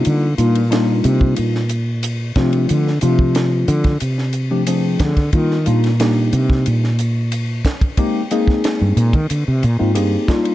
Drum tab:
RD |x-xxx-x-x-x-x-xx|x-x-x-xxx-x-x-xx|x-xxx-x-x-x-x-xx|x-x-x-xxx-x-x-xx|
HH |p-p-p-p-p-p-p-p-|p-p-p-p-p-p-p-p-|p-p-p-p-p-p-p-p-|p-p-p-p-p-p-p-p-|
SD |----o----o----o-|-o--o--o-o----oo|-o-oo--o-o----o-|---oo---------o-|
BD |-------o------o-|---o---o------oo|o------o------oo|o--o---o------o-|